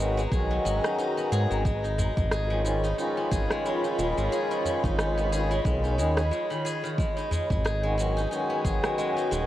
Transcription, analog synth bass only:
0.00 0.27 G#1 loud
0.32 0.59 B1 loud
0.65 0.80 G#1 medium
1.32 1.47 G#2 medium
1.51 2.11 G#1 medium
2.17 2.93 G#1 loud
3.32 3.46 G#1 medium
3.99 4.13 D#1 medium
4.18 4.29 G#1 medium
4.84 5.60 G#1 loud
5.65 6.00 B1 loud
5.99 6.32 D#2 medium
7.51 8.27 G#1 loud
8.65 8.80 G#1 medium
9.32 9.46 D#1 medium

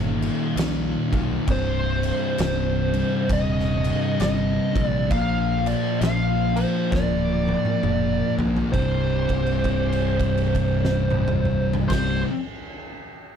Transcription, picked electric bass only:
0.00 0.28 G1 loud
0.56 0.95 A#1 medium
1.12 1.37 B1 medium
1.47 2.10 C1 loud
2.39 3.01 C1 loud
3.29 3.92 D#1 loud
4.20 4.58 G1 medium
4.75 5.11 A#1 medium
5.11 5.73 A#1 loud
6.01 6.63 A#1 medium
6.92 7.54 D1 loud
7.83 8.21 F1 loud
8.38 8.62 A#1 medium
8.74 11.73 C1 loud
11.90 12.23 C1 medium

